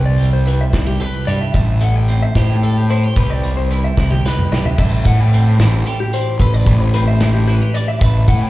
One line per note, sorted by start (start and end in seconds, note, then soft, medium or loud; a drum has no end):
0.00 0.62 C2 medium
0.00 1.51 C3 medium
0.00 0.17 G3 medium
0.00 0.45 E4 medium
0.00 0.73 G4 medium
0.05 0.33 D5 medium
0.18 1.81 G3 medium
0.18 closed hi-hat medium
0.33 0.46 C5 medium
0.46 0.74 E4 medium
0.46 0.60 B4 medium
0.46 closed hi-hat medium
0.61 0.87 E5 medium
0.73 0.96 C2 medium
0.73 0.87 E4 medium
0.73 kick medium
0.73 snare loud
0.73 closed hi-hat medium
0.87 1.27 G4 soft
0.87 1.01 G4 medium
1.00 1.14 A4 medium
1.00 1.28 B4 medium
1.00 closed hi-hat medium
1.14 1.54 B4 soft
1.27 1.39 G2 medium
1.27 1.57 G4 medium
1.27 1.41 D5 medium
1.27 closed hi-hat medium
1.41 1.54 E5 medium
1.54 2.24 A1 medium
1.54 3.13 A2 medium
1.54 1.82 E5 medium
1.54 kick medium
1.54 closed hi-hat medium
1.81 3.13 A3 medium
1.81 1.96 F#5 medium
1.81 closed hi-hat medium
1.96 2.22 G5 medium
2.08 3.18 C4 medium
2.08 closed hi-hat medium
2.22 2.36 E5 medium
2.35 3.05 A2 medium
2.35 2.90 G4 medium
2.35 2.63 C5 medium
2.35 kick medium
2.35 snare medium
2.35 closed hi-hat medium
2.63 2.77 A4 medium
2.63 3.17 A4 medium
2.63 closed hi-hat medium
2.77 2.90 G4 medium
2.90 3.04 E4 medium
2.90 3.16 C5 medium
2.90 closed hi-hat medium
3.04 3.17 G4 soft
3.16 3.86 C2 medium
3.16 4.76 C3 medium
3.16 3.42 G3 medium
3.16 3.71 E4 soft
3.16 3.97 G4 soft
3.16 3.30 B4 medium
3.16 4.25 B4 medium
3.16 kick loud
3.16 closed hi-hat medium
3.30 3.56 D5 medium
3.44 5.04 G3 medium
3.44 closed hi-hat medium
3.57 3.70 C5 medium
3.70 3.96 E4 medium
3.70 3.84 B4 medium
3.70 closed hi-hat medium
3.84 4.11 E5 medium
3.97 4.20 C2 medium
3.97 4.10 E4 medium
3.97 kick medium
3.97 snare soft
4.10 4.51 G4 soft
4.10 4.25 G4 medium
4.10 high tom medium
4.25 4.52 B4 medium
4.25 4.76 B4 medium
4.25 snare medium
4.39 mid tom medium
4.51 4.63 B1 medium
4.51 4.75 G4 medium
4.51 4.65 D5 medium
4.51 snare medium
4.65 4.79 E5 medium
4.65 floor tom medium
4.78 5.02 A1 medium
4.78 6.40 A2 medium
4.78 4.92 A4 medium
4.78 5.06 E5 medium
4.78 kick loud
4.78 crash loud
4.92 6.13 B4 medium
5.05 5.61 A2 medium
5.05 6.57 A3 medium
5.05 5.20 F#5 medium
5.05 kick medium
5.05 closed hi-hat medium
5.20 5.47 G5 medium
5.33 6.95 C4 medium
5.33 closed hi-hat medium
5.47 5.60 E5 medium
5.59 5.82 A1 loud
5.59 7.21 E3 medium
5.59 5.87 C5 medium
5.59 snare loud
5.59 closed hi-hat medium
5.86 6.44 G4 medium
5.86 6.00 A4 medium
5.86 closed hi-hat medium
6.00 6.13 G4 medium
6.13 6.40 C5 medium
6.13 6.41 D5 medium
6.13 closed hi-hat medium
6.39 6.63 A1 loud
6.39 8.03 A2 medium
6.39 6.54 A4 medium
6.39 6.54 B4 medium
6.39 kick loud
6.39 closed hi-hat loud
6.54 7.75 B4 medium
6.54 6.81 D5 medium
6.66 7.59 A1 medium
6.66 8.07 A3 medium
6.66 kick medium
6.66 closed hi-hat medium
6.81 6.94 C5 medium
6.94 8.50 C4 medium
6.94 7.07 B4 medium
6.94 closed hi-hat medium
7.08 7.34 E5 medium
7.20 8.50 E3 medium
7.20 snare loud
7.20 closed hi-hat medium
7.34 7.47 G4 medium
7.47 7.62 E4 medium
7.47 7.74 B4 medium
7.47 closed hi-hat medium
7.62 8.02 G4 soft
7.74 7.88 D5 medium
7.74 8.03 D5 medium
7.74 closed hi-hat medium
7.88 8.00 E5 medium
8.01 8.24 A1 medium
8.01 8.50 A2 medium
8.01 8.50 B4 medium
8.01 8.28 E5 medium
8.01 kick loud
8.01 closed hi-hat loud
8.28 8.50 A2 medium
8.28 8.50 A3 medium
8.28 8.41 F#5 medium
8.28 kick medium
8.28 closed hi-hat medium
8.41 8.50 G5 medium